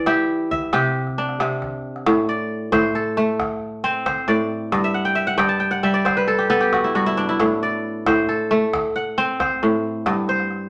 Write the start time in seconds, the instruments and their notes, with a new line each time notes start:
Already playing: kora E3 D5
0.06 kora E4 G4, calabash click
0.51 kora E5, calabash thump
0.62 calabash click
0.73 kora C3 G4, calabash click
1.07 calabash thump, calabash click
1.18 kora D4
1.29 calabash click
1.40 kora C3, calabash click
1.62 calabash thump, calabash click
1.96 calabash click
2.06 kora A2, calabash thump, calabash click
2.29 kora D5
2.72 kora A2 C5, calabash thump, calabash click
2.95 kora A4
3.17 kora A3
3.40 calabash thump, calabash click
3.84 kora C4
4.06 kora C5, calabash thump, calabash click
4.28 kora A2 D5
4.72 kora G2, calabash thump, calabash click
4.84 kora E5
4.94 kora F#5
5.05 kora G5
5.15 kora E5
5.27 kora F#5
5.38 kora G2 G5, calabash thump, calabash click
5.49 kora A5
5.60 kora G5
5.71 kora F#5
5.83 kora G3 E5
5.94 kora D5
6.05 kora C5, calabash thump, calabash click
6.17 kora B4
6.28 kora A4
6.38 kora G4
6.50 kora B3 A4
6.61 kora G4
6.73 kora F#4, calabash thump, calabash click
6.84 kora E4
6.95 kora G2 F#4
7.06 kora E4
7.17 kora D4
7.29 kora E4
7.40 kora A2, calabash thump, calabash click
7.63 kora D5
8.06 kora A2 C5, calabash thump, calabash click
8.29 kora A4
8.51 kora A3
8.73 calabash thump, calabash click
8.96 kora F#5
9.18 kora C4
9.40 kora C5, calabash thump, calabash click
9.63 kora A2
10.06 kora G2, calabash thump, calabash click
10.17 calabash click
10.28 kora C5, calabash click
10.40 calabash click
10.50 calabash click